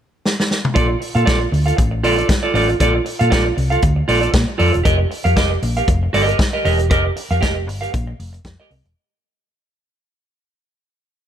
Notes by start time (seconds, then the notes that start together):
0.26 snare
0.40 snare
0.51 snare
0.65 mid tom
0.74 A#1 F4 A4 D5, kick, closed hi-hat
0.89 muted clean electric guitar stroke
1.00 muted clean electric guitar stroke, open hi-hat
1.15 A#2 F4 A4 F5, closed hi-hat
1.25 A#1 F4 A4 D5, kick, snare, closed hi-hat
1.40 muted clean electric guitar stroke
1.51 D2, muted clean electric guitar stroke, open hi-hat
1.66 F4 A4 F5, closed hi-hat
1.77 A1, muted clean electric guitar stroke, kick, closed hi-hat
1.91 muted clean electric guitar stroke
2.03 A#1 F4 A4 D5, open hi-hat
2.18 F4 A4 D5, closed hi-hat
2.29 muted clean electric guitar stroke, kick, snare, closed hi-hat
2.43 F4 A4 D5
2.54 A1 F4 A4 D5, open hi-hat
2.69 muted clean electric guitar stroke, closed hi-hat
2.80 A#1 F4 A4 D5, kick, closed hi-hat
2.95 muted clean electric guitar stroke
3.05 muted clean electric guitar stroke, open hi-hat
3.19 A#2 F4 A4 F5, closed hi-hat
3.30 A#1 F4 A4 D5, kick, snare, closed hi-hat
3.46 muted clean electric guitar stroke
3.56 C2, muted clean electric guitar stroke, open hi-hat
3.70 F4 A4 F5, closed hi-hat
3.82 D2, muted clean electric guitar stroke, kick, closed hi-hat
3.96 muted clean electric guitar stroke
4.08 A#1 F4 A4 D5, open hi-hat
4.21 F4 A4 D5, closed hi-hat
4.32 A#2, muted clean electric guitar stroke, kick, snare, closed hi-hat
4.47 muted clean electric guitar stroke
4.58 F2 F4 A4 D5, open hi-hat
4.73 E1, muted clean electric guitar stroke, closed hi-hat
4.84 F1 G4 A#4 D#5, kick, closed hi-hat
4.98 muted clean electric guitar stroke
5.10 muted clean electric guitar stroke, open hi-hat
5.24 F2 G4 A#4 F5, closed hi-hat
5.36 F1 G4 A#4 D#5, kick, snare, closed hi-hat
5.51 muted clean electric guitar stroke
5.62 A#1, muted clean electric guitar stroke, open hi-hat
5.77 G4 A#4 F5, closed hi-hat
5.88 F1, muted clean electric guitar stroke, kick, closed hi-hat
6.03 muted clean electric guitar stroke
6.13 G1 G4 A#4 D#5, open hi-hat
6.27 G4 A#4 D#5, closed hi-hat
6.39 muted clean electric guitar stroke, kick, snare, closed hi-hat
6.53 G4 A#4 D#5
6.65 E1 G4 A#4 D#5, open hi-hat
6.79 muted clean electric guitar stroke, closed hi-hat
6.90 F1 G4 A#4 D#5, kick, closed hi-hat
7.05 muted clean electric guitar stroke
7.16 muted clean electric guitar stroke, open hi-hat
7.31 F2 G4 A#4 F5, closed hi-hat
7.41 F1 G4 A#4 D#5, kick, snare, closed hi-hat
7.56 muted clean electric guitar stroke
7.67 G1, muted clean electric guitar stroke, open hi-hat
7.81 G4 A#4 F5, closed hi-hat
7.92 A#1, muted clean electric guitar stroke, kick, closed hi-hat
8.07 muted clean electric guitar stroke
8.19 F1, open hi-hat
8.33 muted clean electric guitar stroke, closed hi-hat
8.44 F2, muted clean electric guitar stroke, kick, snare, closed hi-hat
8.60 G4 A#4 D#5
8.71 C2, muted clean electric guitar stroke, open hi-hat
8.85 E1, muted clean electric guitar stroke, closed hi-hat